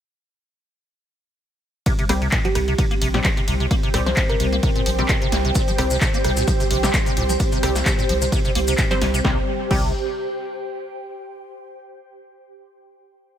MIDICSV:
0, 0, Header, 1, 8, 480
1, 0, Start_track
1, 0, Tempo, 461538
1, 1935, Time_signature, 4, 2, 24, 8
1, 13917, End_track
2, 0, Start_track
2, 0, Title_t, "Ambient pad"
2, 0, Program_c, 0, 92
2, 1936, Note_on_c, 0, 67, 100
2, 2645, Note_on_c, 0, 72, 77
2, 3574, Note_on_c, 0, 79, 90
2, 9602, Note_off_c, 0, 67, 0
2, 9615, Note_off_c, 0, 79, 0
2, 9615, Note_on_c, 0, 67, 83
2, 9617, Note_off_c, 0, 72, 0
2, 9694, Note_on_c, 0, 72, 83
2, 9768, Note_on_c, 0, 79, 79
2, 11494, Note_off_c, 0, 67, 0
2, 11494, Note_off_c, 0, 72, 0
2, 11494, Note_off_c, 0, 79, 0
2, 13917, End_track
3, 0, Start_track
3, 0, Title_t, "Synth pluck"
3, 0, Program_c, 1, 84
3, 2547, Note_on_c, 1, 67, 91
3, 2896, Note_off_c, 1, 67, 0
3, 4225, Note_on_c, 1, 72, 93
3, 4415, Note_off_c, 1, 72, 0
3, 4465, Note_on_c, 1, 70, 89
3, 4946, Note_off_c, 1, 70, 0
3, 13917, End_track
4, 0, Start_track
4, 0, Title_t, "String machine"
4, 0, Program_c, 2, 50
4, 1935, Note_on_c, 2, 55, 82
4, 1935, Note_on_c, 2, 72, 96
4, 1936, Note_on_c, 2, 60, 77
4, 9574, Note_off_c, 2, 55, 0
4, 9574, Note_off_c, 2, 60, 0
4, 9574, Note_off_c, 2, 72, 0
4, 9616, Note_on_c, 2, 55, 78
4, 9616, Note_on_c, 2, 60, 70
4, 9616, Note_on_c, 2, 72, 81
4, 9839, Note_off_c, 2, 55, 0
4, 9839, Note_off_c, 2, 60, 0
4, 9839, Note_off_c, 2, 72, 0
4, 13917, End_track
5, 0, Start_track
5, 0, Title_t, "Synth stab"
5, 0, Program_c, 3, 62
5, 2176, Note_on_c, 3, 55, 88
5, 2176, Note_on_c, 3, 60, 76
5, 2176, Note_on_c, 3, 67, 94
5, 2296, Note_off_c, 3, 55, 0
5, 2296, Note_off_c, 3, 60, 0
5, 2296, Note_off_c, 3, 67, 0
5, 3267, Note_on_c, 3, 55, 85
5, 3267, Note_on_c, 3, 60, 76
5, 3267, Note_on_c, 3, 67, 91
5, 3368, Note_off_c, 3, 55, 0
5, 3368, Note_off_c, 3, 60, 0
5, 3368, Note_off_c, 3, 67, 0
5, 4096, Note_on_c, 3, 55, 86
5, 4096, Note_on_c, 3, 60, 80
5, 4096, Note_on_c, 3, 67, 97
5, 4216, Note_off_c, 3, 55, 0
5, 4216, Note_off_c, 3, 60, 0
5, 4216, Note_off_c, 3, 67, 0
5, 5186, Note_on_c, 3, 55, 86
5, 5186, Note_on_c, 3, 60, 79
5, 5186, Note_on_c, 3, 67, 94
5, 5287, Note_off_c, 3, 55, 0
5, 5287, Note_off_c, 3, 60, 0
5, 5287, Note_off_c, 3, 67, 0
5, 6014, Note_on_c, 3, 67, 95
5, 6015, Note_on_c, 3, 55, 90
5, 6015, Note_on_c, 3, 60, 80
5, 6135, Note_off_c, 3, 55, 0
5, 6135, Note_off_c, 3, 60, 0
5, 6135, Note_off_c, 3, 67, 0
5, 7105, Note_on_c, 3, 55, 89
5, 7105, Note_on_c, 3, 60, 76
5, 7105, Note_on_c, 3, 67, 94
5, 7207, Note_off_c, 3, 55, 0
5, 7207, Note_off_c, 3, 60, 0
5, 7207, Note_off_c, 3, 67, 0
5, 7935, Note_on_c, 3, 55, 88
5, 7935, Note_on_c, 3, 60, 83
5, 7935, Note_on_c, 3, 67, 96
5, 8056, Note_off_c, 3, 55, 0
5, 8056, Note_off_c, 3, 60, 0
5, 8056, Note_off_c, 3, 67, 0
5, 9265, Note_on_c, 3, 55, 99
5, 9265, Note_on_c, 3, 60, 87
5, 9265, Note_on_c, 3, 72, 104
5, 9359, Note_off_c, 3, 55, 0
5, 9359, Note_off_c, 3, 60, 0
5, 9359, Note_off_c, 3, 72, 0
5, 9615, Note_on_c, 3, 55, 82
5, 9615, Note_on_c, 3, 60, 81
5, 9615, Note_on_c, 3, 67, 92
5, 9757, Note_off_c, 3, 55, 0
5, 9757, Note_off_c, 3, 60, 0
5, 9757, Note_off_c, 3, 67, 0
5, 10095, Note_on_c, 3, 55, 86
5, 10095, Note_on_c, 3, 60, 83
5, 10095, Note_on_c, 3, 67, 96
5, 10278, Note_off_c, 3, 55, 0
5, 10278, Note_off_c, 3, 60, 0
5, 10278, Note_off_c, 3, 67, 0
5, 13917, End_track
6, 0, Start_track
6, 0, Title_t, "Acid bass"
6, 0, Program_c, 4, 38
6, 1936, Note_on_c, 4, 48, 83
6, 2008, Note_off_c, 4, 48, 0
6, 2067, Note_on_c, 4, 48, 78
6, 2127, Note_off_c, 4, 48, 0
6, 2176, Note_on_c, 4, 58, 73
6, 2219, Note_off_c, 4, 58, 0
6, 2306, Note_on_c, 4, 48, 78
6, 2366, Note_off_c, 4, 48, 0
6, 2416, Note_on_c, 4, 46, 85
6, 2487, Note_off_c, 4, 46, 0
6, 2547, Note_on_c, 4, 53, 75
6, 2583, Note_off_c, 4, 53, 0
6, 2655, Note_on_c, 4, 48, 80
6, 2699, Note_off_c, 4, 48, 0
6, 2786, Note_on_c, 4, 48, 80
6, 2847, Note_off_c, 4, 48, 0
6, 2896, Note_on_c, 4, 48, 81
6, 2968, Note_off_c, 4, 48, 0
6, 3026, Note_on_c, 4, 58, 73
6, 3062, Note_off_c, 4, 58, 0
6, 3136, Note_on_c, 4, 48, 77
6, 3208, Note_off_c, 4, 48, 0
6, 3267, Note_on_c, 4, 46, 80
6, 3327, Note_off_c, 4, 46, 0
6, 3377, Note_on_c, 4, 53, 90
6, 3419, Note_off_c, 4, 53, 0
6, 3506, Note_on_c, 4, 48, 75
6, 3542, Note_off_c, 4, 48, 0
6, 3616, Note_on_c, 4, 48, 76
6, 3688, Note_off_c, 4, 48, 0
6, 3747, Note_on_c, 4, 48, 74
6, 3807, Note_off_c, 4, 48, 0
6, 3856, Note_on_c, 4, 58, 84
6, 3899, Note_off_c, 4, 58, 0
6, 3987, Note_on_c, 4, 48, 77
6, 4047, Note_off_c, 4, 48, 0
6, 4096, Note_on_c, 4, 46, 78
6, 4167, Note_off_c, 4, 46, 0
6, 4227, Note_on_c, 4, 53, 80
6, 4263, Note_off_c, 4, 53, 0
6, 4336, Note_on_c, 4, 48, 85
6, 4379, Note_off_c, 4, 48, 0
6, 4467, Note_on_c, 4, 48, 77
6, 4527, Note_off_c, 4, 48, 0
6, 4577, Note_on_c, 4, 48, 79
6, 4648, Note_off_c, 4, 48, 0
6, 4707, Note_on_c, 4, 58, 80
6, 4743, Note_off_c, 4, 58, 0
6, 4817, Note_on_c, 4, 48, 83
6, 4888, Note_off_c, 4, 48, 0
6, 4947, Note_on_c, 4, 46, 74
6, 5007, Note_off_c, 4, 46, 0
6, 5056, Note_on_c, 4, 53, 80
6, 5099, Note_off_c, 4, 53, 0
6, 5187, Note_on_c, 4, 48, 79
6, 5223, Note_off_c, 4, 48, 0
6, 5297, Note_on_c, 4, 48, 87
6, 5368, Note_off_c, 4, 48, 0
6, 5428, Note_on_c, 4, 48, 74
6, 5487, Note_off_c, 4, 48, 0
6, 5536, Note_on_c, 4, 58, 77
6, 5579, Note_off_c, 4, 58, 0
6, 5667, Note_on_c, 4, 48, 78
6, 5727, Note_off_c, 4, 48, 0
6, 5776, Note_on_c, 4, 46, 83
6, 5848, Note_off_c, 4, 46, 0
6, 5906, Note_on_c, 4, 53, 73
6, 5942, Note_off_c, 4, 53, 0
6, 6016, Note_on_c, 4, 48, 74
6, 6059, Note_off_c, 4, 48, 0
6, 6147, Note_on_c, 4, 48, 82
6, 6207, Note_off_c, 4, 48, 0
6, 6256, Note_on_c, 4, 48, 89
6, 6327, Note_off_c, 4, 48, 0
6, 6386, Note_on_c, 4, 58, 78
6, 6422, Note_off_c, 4, 58, 0
6, 6496, Note_on_c, 4, 48, 76
6, 6568, Note_off_c, 4, 48, 0
6, 6626, Note_on_c, 4, 46, 82
6, 6686, Note_off_c, 4, 46, 0
6, 6736, Note_on_c, 4, 53, 82
6, 6779, Note_off_c, 4, 53, 0
6, 6866, Note_on_c, 4, 48, 79
6, 6902, Note_off_c, 4, 48, 0
6, 6975, Note_on_c, 4, 48, 81
6, 7047, Note_off_c, 4, 48, 0
6, 7105, Note_on_c, 4, 48, 83
6, 7166, Note_off_c, 4, 48, 0
6, 7215, Note_on_c, 4, 58, 87
6, 7258, Note_off_c, 4, 58, 0
6, 7344, Note_on_c, 4, 48, 75
6, 7406, Note_off_c, 4, 48, 0
6, 7454, Note_on_c, 4, 46, 75
6, 7527, Note_off_c, 4, 46, 0
6, 7585, Note_on_c, 4, 53, 76
6, 7622, Note_off_c, 4, 53, 0
6, 7694, Note_on_c, 4, 48, 80
6, 7738, Note_off_c, 4, 48, 0
6, 7825, Note_on_c, 4, 48, 78
6, 7886, Note_off_c, 4, 48, 0
6, 7935, Note_on_c, 4, 48, 77
6, 8007, Note_off_c, 4, 48, 0
6, 8065, Note_on_c, 4, 58, 76
6, 8102, Note_off_c, 4, 58, 0
6, 8174, Note_on_c, 4, 48, 85
6, 8247, Note_off_c, 4, 48, 0
6, 8305, Note_on_c, 4, 46, 79
6, 8366, Note_off_c, 4, 46, 0
6, 8414, Note_on_c, 4, 53, 80
6, 8458, Note_off_c, 4, 53, 0
6, 8546, Note_on_c, 4, 48, 78
6, 8582, Note_off_c, 4, 48, 0
6, 8656, Note_on_c, 4, 48, 85
6, 8727, Note_off_c, 4, 48, 0
6, 8786, Note_on_c, 4, 48, 75
6, 8846, Note_off_c, 4, 48, 0
6, 8896, Note_on_c, 4, 58, 80
6, 8939, Note_off_c, 4, 58, 0
6, 9026, Note_on_c, 4, 48, 81
6, 9086, Note_off_c, 4, 48, 0
6, 9135, Note_on_c, 4, 46, 86
6, 9207, Note_off_c, 4, 46, 0
6, 9265, Note_on_c, 4, 53, 78
6, 9302, Note_off_c, 4, 53, 0
6, 9375, Note_on_c, 4, 48, 74
6, 9419, Note_off_c, 4, 48, 0
6, 9505, Note_on_c, 4, 48, 75
6, 9566, Note_off_c, 4, 48, 0
6, 9615, Note_on_c, 4, 48, 96
6, 9757, Note_off_c, 4, 48, 0
6, 10095, Note_on_c, 4, 48, 95
6, 10319, Note_off_c, 4, 48, 0
6, 13917, End_track
7, 0, Start_track
7, 0, Title_t, "Sub bass"
7, 0, Program_c, 5, 38
7, 2177, Note_on_c, 5, 36, 101
7, 2375, Note_off_c, 5, 36, 0
7, 2656, Note_on_c, 5, 36, 86
7, 2855, Note_off_c, 5, 36, 0
7, 3136, Note_on_c, 5, 34, 79
7, 3335, Note_off_c, 5, 34, 0
7, 3616, Note_on_c, 5, 36, 104
7, 3815, Note_off_c, 5, 36, 0
7, 4097, Note_on_c, 5, 36, 106
7, 4295, Note_off_c, 5, 36, 0
7, 4575, Note_on_c, 5, 36, 90
7, 4774, Note_off_c, 5, 36, 0
7, 5056, Note_on_c, 5, 34, 80
7, 5255, Note_off_c, 5, 34, 0
7, 5536, Note_on_c, 5, 36, 104
7, 5735, Note_off_c, 5, 36, 0
7, 6015, Note_on_c, 5, 36, 103
7, 6214, Note_off_c, 5, 36, 0
7, 6495, Note_on_c, 5, 36, 88
7, 6694, Note_off_c, 5, 36, 0
7, 6976, Note_on_c, 5, 34, 80
7, 7175, Note_off_c, 5, 34, 0
7, 7456, Note_on_c, 5, 36, 100
7, 7655, Note_off_c, 5, 36, 0
7, 7935, Note_on_c, 5, 36, 102
7, 8134, Note_off_c, 5, 36, 0
7, 8415, Note_on_c, 5, 36, 89
7, 8615, Note_off_c, 5, 36, 0
7, 8895, Note_on_c, 5, 36, 96
7, 9094, Note_off_c, 5, 36, 0
7, 9375, Note_on_c, 5, 36, 80
7, 9574, Note_off_c, 5, 36, 0
7, 9615, Note_on_c, 5, 36, 101
7, 9757, Note_off_c, 5, 36, 0
7, 10095, Note_on_c, 5, 36, 99
7, 10318, Note_off_c, 5, 36, 0
7, 13917, End_track
8, 0, Start_track
8, 0, Title_t, "Drums"
8, 1936, Note_on_c, 9, 36, 106
8, 1936, Note_on_c, 9, 42, 69
8, 1936, Note_on_c, 9, 51, 53
8, 2040, Note_off_c, 9, 36, 0
8, 2040, Note_off_c, 9, 42, 0
8, 2040, Note_off_c, 9, 51, 0
8, 2066, Note_on_c, 9, 42, 42
8, 2170, Note_off_c, 9, 42, 0
8, 2176, Note_on_c, 9, 37, 78
8, 2176, Note_on_c, 9, 46, 111
8, 2176, Note_on_c, 9, 51, 78
8, 2280, Note_off_c, 9, 37, 0
8, 2280, Note_off_c, 9, 46, 0
8, 2280, Note_off_c, 9, 51, 0
8, 2306, Note_on_c, 9, 42, 41
8, 2410, Note_off_c, 9, 42, 0
8, 2411, Note_on_c, 9, 39, 124
8, 2416, Note_on_c, 9, 36, 121
8, 2416, Note_on_c, 9, 42, 68
8, 2416, Note_on_c, 9, 51, 58
8, 2515, Note_off_c, 9, 39, 0
8, 2520, Note_off_c, 9, 36, 0
8, 2520, Note_off_c, 9, 42, 0
8, 2520, Note_off_c, 9, 51, 0
8, 2546, Note_on_c, 9, 42, 42
8, 2650, Note_off_c, 9, 42, 0
8, 2655, Note_on_c, 9, 37, 62
8, 2655, Note_on_c, 9, 46, 91
8, 2655, Note_on_c, 9, 51, 80
8, 2759, Note_off_c, 9, 37, 0
8, 2759, Note_off_c, 9, 46, 0
8, 2759, Note_off_c, 9, 51, 0
8, 2786, Note_on_c, 9, 42, 41
8, 2890, Note_off_c, 9, 42, 0
8, 2896, Note_on_c, 9, 36, 121
8, 2896, Note_on_c, 9, 42, 68
8, 2896, Note_on_c, 9, 51, 57
8, 3000, Note_off_c, 9, 36, 0
8, 3000, Note_off_c, 9, 42, 0
8, 3000, Note_off_c, 9, 51, 0
8, 3027, Note_on_c, 9, 42, 42
8, 3131, Note_off_c, 9, 42, 0
8, 3136, Note_on_c, 9, 46, 109
8, 3136, Note_on_c, 9, 51, 83
8, 3240, Note_off_c, 9, 46, 0
8, 3240, Note_off_c, 9, 51, 0
8, 3267, Note_on_c, 9, 38, 58
8, 3267, Note_on_c, 9, 42, 40
8, 3371, Note_off_c, 9, 38, 0
8, 3371, Note_off_c, 9, 42, 0
8, 3372, Note_on_c, 9, 39, 121
8, 3376, Note_on_c, 9, 36, 119
8, 3376, Note_on_c, 9, 42, 68
8, 3376, Note_on_c, 9, 51, 59
8, 3476, Note_off_c, 9, 39, 0
8, 3480, Note_off_c, 9, 36, 0
8, 3480, Note_off_c, 9, 42, 0
8, 3480, Note_off_c, 9, 51, 0
8, 3507, Note_on_c, 9, 42, 42
8, 3611, Note_off_c, 9, 42, 0
8, 3616, Note_on_c, 9, 46, 93
8, 3616, Note_on_c, 9, 51, 78
8, 3720, Note_off_c, 9, 46, 0
8, 3720, Note_off_c, 9, 51, 0
8, 3747, Note_on_c, 9, 42, 41
8, 3851, Note_off_c, 9, 42, 0
8, 3856, Note_on_c, 9, 36, 119
8, 3856, Note_on_c, 9, 42, 66
8, 3856, Note_on_c, 9, 51, 54
8, 3960, Note_off_c, 9, 36, 0
8, 3960, Note_off_c, 9, 42, 0
8, 3960, Note_off_c, 9, 51, 0
8, 3987, Note_on_c, 9, 42, 41
8, 4091, Note_off_c, 9, 42, 0
8, 4096, Note_on_c, 9, 37, 77
8, 4096, Note_on_c, 9, 46, 114
8, 4096, Note_on_c, 9, 51, 76
8, 4200, Note_off_c, 9, 37, 0
8, 4200, Note_off_c, 9, 46, 0
8, 4200, Note_off_c, 9, 51, 0
8, 4227, Note_on_c, 9, 38, 37
8, 4227, Note_on_c, 9, 42, 39
8, 4331, Note_off_c, 9, 38, 0
8, 4331, Note_off_c, 9, 42, 0
8, 4332, Note_on_c, 9, 39, 127
8, 4336, Note_on_c, 9, 36, 127
8, 4336, Note_on_c, 9, 42, 68
8, 4336, Note_on_c, 9, 51, 57
8, 4436, Note_off_c, 9, 39, 0
8, 4440, Note_off_c, 9, 36, 0
8, 4440, Note_off_c, 9, 42, 0
8, 4440, Note_off_c, 9, 51, 0
8, 4466, Note_on_c, 9, 42, 39
8, 4570, Note_off_c, 9, 42, 0
8, 4575, Note_on_c, 9, 46, 98
8, 4575, Note_on_c, 9, 51, 75
8, 4679, Note_off_c, 9, 46, 0
8, 4679, Note_off_c, 9, 51, 0
8, 4706, Note_on_c, 9, 42, 40
8, 4810, Note_off_c, 9, 42, 0
8, 4815, Note_on_c, 9, 42, 67
8, 4815, Note_on_c, 9, 51, 55
8, 4816, Note_on_c, 9, 36, 127
8, 4919, Note_off_c, 9, 42, 0
8, 4919, Note_off_c, 9, 51, 0
8, 4920, Note_off_c, 9, 36, 0
8, 4946, Note_on_c, 9, 42, 41
8, 5050, Note_off_c, 9, 42, 0
8, 5055, Note_on_c, 9, 46, 112
8, 5055, Note_on_c, 9, 51, 82
8, 5159, Note_off_c, 9, 46, 0
8, 5159, Note_off_c, 9, 51, 0
8, 5185, Note_on_c, 9, 42, 41
8, 5289, Note_off_c, 9, 42, 0
8, 5290, Note_on_c, 9, 39, 127
8, 5295, Note_on_c, 9, 36, 121
8, 5295, Note_on_c, 9, 42, 69
8, 5295, Note_on_c, 9, 51, 53
8, 5394, Note_off_c, 9, 39, 0
8, 5399, Note_off_c, 9, 36, 0
8, 5399, Note_off_c, 9, 42, 0
8, 5399, Note_off_c, 9, 51, 0
8, 5426, Note_on_c, 9, 42, 41
8, 5530, Note_off_c, 9, 42, 0
8, 5535, Note_on_c, 9, 38, 59
8, 5535, Note_on_c, 9, 46, 99
8, 5535, Note_on_c, 9, 51, 74
8, 5639, Note_off_c, 9, 38, 0
8, 5639, Note_off_c, 9, 46, 0
8, 5639, Note_off_c, 9, 51, 0
8, 5666, Note_on_c, 9, 42, 41
8, 5770, Note_off_c, 9, 42, 0
8, 5773, Note_on_c, 9, 70, 73
8, 5775, Note_on_c, 9, 36, 122
8, 5775, Note_on_c, 9, 42, 64
8, 5775, Note_on_c, 9, 51, 54
8, 5877, Note_off_c, 9, 70, 0
8, 5879, Note_off_c, 9, 36, 0
8, 5879, Note_off_c, 9, 42, 0
8, 5879, Note_off_c, 9, 51, 0
8, 5906, Note_on_c, 9, 42, 41
8, 5907, Note_on_c, 9, 70, 44
8, 6010, Note_off_c, 9, 42, 0
8, 6011, Note_off_c, 9, 70, 0
8, 6015, Note_on_c, 9, 37, 83
8, 6015, Note_on_c, 9, 46, 117
8, 6015, Note_on_c, 9, 51, 75
8, 6119, Note_off_c, 9, 37, 0
8, 6119, Note_off_c, 9, 46, 0
8, 6119, Note_off_c, 9, 51, 0
8, 6140, Note_on_c, 9, 70, 84
8, 6146, Note_on_c, 9, 42, 38
8, 6244, Note_off_c, 9, 70, 0
8, 6250, Note_off_c, 9, 42, 0
8, 6250, Note_on_c, 9, 39, 127
8, 6255, Note_on_c, 9, 36, 127
8, 6255, Note_on_c, 9, 42, 68
8, 6255, Note_on_c, 9, 51, 55
8, 6260, Note_on_c, 9, 70, 68
8, 6354, Note_off_c, 9, 39, 0
8, 6359, Note_off_c, 9, 36, 0
8, 6359, Note_off_c, 9, 42, 0
8, 6359, Note_off_c, 9, 51, 0
8, 6364, Note_off_c, 9, 70, 0
8, 6386, Note_on_c, 9, 42, 41
8, 6386, Note_on_c, 9, 70, 39
8, 6490, Note_off_c, 9, 42, 0
8, 6490, Note_off_c, 9, 70, 0
8, 6494, Note_on_c, 9, 37, 62
8, 6494, Note_on_c, 9, 46, 98
8, 6494, Note_on_c, 9, 51, 79
8, 6598, Note_off_c, 9, 37, 0
8, 6598, Note_off_c, 9, 46, 0
8, 6598, Note_off_c, 9, 51, 0
8, 6622, Note_on_c, 9, 70, 77
8, 6626, Note_on_c, 9, 42, 39
8, 6726, Note_off_c, 9, 70, 0
8, 6730, Note_off_c, 9, 42, 0
8, 6735, Note_on_c, 9, 36, 127
8, 6735, Note_on_c, 9, 42, 65
8, 6735, Note_on_c, 9, 51, 55
8, 6735, Note_on_c, 9, 70, 64
8, 6839, Note_off_c, 9, 36, 0
8, 6839, Note_off_c, 9, 42, 0
8, 6839, Note_off_c, 9, 51, 0
8, 6839, Note_off_c, 9, 70, 0
8, 6865, Note_on_c, 9, 42, 37
8, 6869, Note_on_c, 9, 70, 41
8, 6969, Note_off_c, 9, 42, 0
8, 6973, Note_off_c, 9, 70, 0
8, 6974, Note_on_c, 9, 46, 113
8, 6974, Note_on_c, 9, 51, 82
8, 7078, Note_off_c, 9, 46, 0
8, 7078, Note_off_c, 9, 51, 0
8, 7105, Note_on_c, 9, 38, 65
8, 7105, Note_on_c, 9, 42, 40
8, 7115, Note_on_c, 9, 70, 86
8, 7209, Note_off_c, 9, 38, 0
8, 7209, Note_off_c, 9, 42, 0
8, 7210, Note_on_c, 9, 39, 127
8, 7214, Note_on_c, 9, 36, 127
8, 7215, Note_on_c, 9, 42, 64
8, 7215, Note_on_c, 9, 51, 54
8, 7219, Note_off_c, 9, 70, 0
8, 7219, Note_on_c, 9, 70, 67
8, 7314, Note_off_c, 9, 39, 0
8, 7318, Note_off_c, 9, 36, 0
8, 7319, Note_off_c, 9, 42, 0
8, 7319, Note_off_c, 9, 51, 0
8, 7323, Note_off_c, 9, 70, 0
8, 7345, Note_on_c, 9, 42, 41
8, 7350, Note_on_c, 9, 70, 44
8, 7449, Note_off_c, 9, 42, 0
8, 7454, Note_off_c, 9, 70, 0
8, 7455, Note_on_c, 9, 46, 92
8, 7455, Note_on_c, 9, 51, 73
8, 7559, Note_off_c, 9, 46, 0
8, 7559, Note_off_c, 9, 51, 0
8, 7586, Note_on_c, 9, 42, 39
8, 7587, Note_on_c, 9, 70, 77
8, 7690, Note_off_c, 9, 42, 0
8, 7691, Note_off_c, 9, 70, 0
8, 7692, Note_on_c, 9, 70, 66
8, 7694, Note_on_c, 9, 36, 115
8, 7696, Note_on_c, 9, 42, 65
8, 7696, Note_on_c, 9, 51, 58
8, 7796, Note_off_c, 9, 70, 0
8, 7798, Note_off_c, 9, 36, 0
8, 7800, Note_off_c, 9, 42, 0
8, 7800, Note_off_c, 9, 51, 0
8, 7823, Note_on_c, 9, 70, 43
8, 7826, Note_on_c, 9, 42, 40
8, 7927, Note_off_c, 9, 70, 0
8, 7930, Note_off_c, 9, 42, 0
8, 7936, Note_on_c, 9, 37, 83
8, 7936, Note_on_c, 9, 46, 115
8, 7936, Note_on_c, 9, 51, 78
8, 8040, Note_off_c, 9, 37, 0
8, 8040, Note_off_c, 9, 46, 0
8, 8040, Note_off_c, 9, 51, 0
8, 8066, Note_on_c, 9, 38, 39
8, 8066, Note_on_c, 9, 42, 39
8, 8067, Note_on_c, 9, 70, 82
8, 8170, Note_off_c, 9, 38, 0
8, 8170, Note_off_c, 9, 42, 0
8, 8171, Note_off_c, 9, 70, 0
8, 8171, Note_on_c, 9, 39, 127
8, 8175, Note_on_c, 9, 36, 127
8, 8175, Note_on_c, 9, 42, 68
8, 8175, Note_on_c, 9, 51, 57
8, 8183, Note_on_c, 9, 70, 67
8, 8275, Note_off_c, 9, 39, 0
8, 8279, Note_off_c, 9, 36, 0
8, 8279, Note_off_c, 9, 42, 0
8, 8279, Note_off_c, 9, 51, 0
8, 8287, Note_off_c, 9, 70, 0
8, 8306, Note_on_c, 9, 42, 40
8, 8309, Note_on_c, 9, 70, 37
8, 8410, Note_off_c, 9, 42, 0
8, 8413, Note_off_c, 9, 70, 0
8, 8417, Note_on_c, 9, 46, 100
8, 8417, Note_on_c, 9, 51, 74
8, 8521, Note_off_c, 9, 46, 0
8, 8521, Note_off_c, 9, 51, 0
8, 8546, Note_on_c, 9, 70, 83
8, 8547, Note_on_c, 9, 42, 38
8, 8650, Note_off_c, 9, 70, 0
8, 8651, Note_off_c, 9, 42, 0
8, 8655, Note_on_c, 9, 36, 127
8, 8656, Note_on_c, 9, 42, 64
8, 8656, Note_on_c, 9, 51, 57
8, 8661, Note_on_c, 9, 70, 73
8, 8759, Note_off_c, 9, 36, 0
8, 8760, Note_off_c, 9, 42, 0
8, 8760, Note_off_c, 9, 51, 0
8, 8765, Note_off_c, 9, 70, 0
8, 8786, Note_on_c, 9, 70, 44
8, 8787, Note_on_c, 9, 42, 38
8, 8890, Note_off_c, 9, 70, 0
8, 8891, Note_off_c, 9, 42, 0
8, 8896, Note_on_c, 9, 46, 120
8, 8896, Note_on_c, 9, 51, 80
8, 9000, Note_off_c, 9, 46, 0
8, 9000, Note_off_c, 9, 51, 0
8, 9024, Note_on_c, 9, 70, 85
8, 9026, Note_on_c, 9, 42, 39
8, 9128, Note_off_c, 9, 70, 0
8, 9130, Note_off_c, 9, 42, 0
8, 9131, Note_on_c, 9, 39, 117
8, 9132, Note_on_c, 9, 70, 79
8, 9135, Note_on_c, 9, 36, 127
8, 9136, Note_on_c, 9, 42, 66
8, 9136, Note_on_c, 9, 51, 55
8, 9235, Note_off_c, 9, 39, 0
8, 9236, Note_off_c, 9, 70, 0
8, 9239, Note_off_c, 9, 36, 0
8, 9240, Note_off_c, 9, 42, 0
8, 9240, Note_off_c, 9, 51, 0
8, 9266, Note_on_c, 9, 42, 41
8, 9266, Note_on_c, 9, 70, 40
8, 9370, Note_off_c, 9, 42, 0
8, 9370, Note_off_c, 9, 70, 0
8, 9376, Note_on_c, 9, 38, 63
8, 9376, Note_on_c, 9, 46, 96
8, 9376, Note_on_c, 9, 51, 72
8, 9480, Note_off_c, 9, 38, 0
8, 9480, Note_off_c, 9, 46, 0
8, 9480, Note_off_c, 9, 51, 0
8, 9506, Note_on_c, 9, 42, 37
8, 9511, Note_on_c, 9, 70, 74
8, 9610, Note_off_c, 9, 42, 0
8, 9615, Note_off_c, 9, 70, 0
8, 9615, Note_on_c, 9, 36, 111
8, 9615, Note_on_c, 9, 38, 89
8, 9719, Note_off_c, 9, 36, 0
8, 9719, Note_off_c, 9, 38, 0
8, 10095, Note_on_c, 9, 36, 117
8, 10095, Note_on_c, 9, 49, 90
8, 10199, Note_off_c, 9, 36, 0
8, 10199, Note_off_c, 9, 49, 0
8, 13917, End_track
0, 0, End_of_file